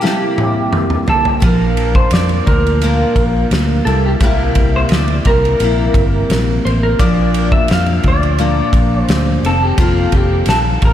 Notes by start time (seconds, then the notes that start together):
Already playing: G4
0.01 C3 G3 A#3 E4, snare
0.38 high tom
0.73 mid tom
0.90 mid tom
1.06 G3 A#3 E4 A4, floor tom
1.25 G4, floor tom
1.40 A#1 A#2 F3 A#3 A#4, kick, ride
1.44 D4
1.77 ride
1.95 C5, kick
2.11 F2 D5, snare, ride
2.29 ride
2.47 D2 A#4, kick, ride
2.67 ride
2.81 A#2 F3 A#3 D4, ride
3.16 A#1, kick, ride
3.51 D2, snare, ride
3.85 C2 G3 A#3 E4 A4, ride
4.06 G4
4.20 C2 C3 G3 A#3 E4 A#4, kick, ride
4.55 C2, kick, ride
4.76 C5
4.89 D2 C3 G3 A#3 D5, snare, ride
4.94 E4
5.08 ride
5.25 C2 A#4, kick, ride
5.45 ride
5.59 A#1 C3 G3 A#3, ride
5.63 E4
5.94 G1, kick, ride
6.30 A#1, snare, ride
6.65 A1 C5, ride
6.83 A#4
6.99 A#1 A#2 F3 A#3 D4 D5, kick, ride
7.34 ride
7.52 E5, kick
7.68 F2 A#2 F3 A#3 D4 F5, snare, ride
7.86 ride
8.03 D2, kick, ride
8.08 D5
8.23 ride
8.38 A#2 F3 A#3 D4, ride
8.73 A#1, kick, ride
9.03 C5
9.08 D2, snare, ride
9.43 F1 D#3 A#3 C4 A4, ride
9.63 G4
9.77 F1 F2 D#3 A#3 C4 F4, kick, ride
10.12 F1 G4, kick, ride
10.46 A#1 F2 D#3 A4, snare, ride
10.50 A#3 C4
10.82 A1 A#4, kick, ride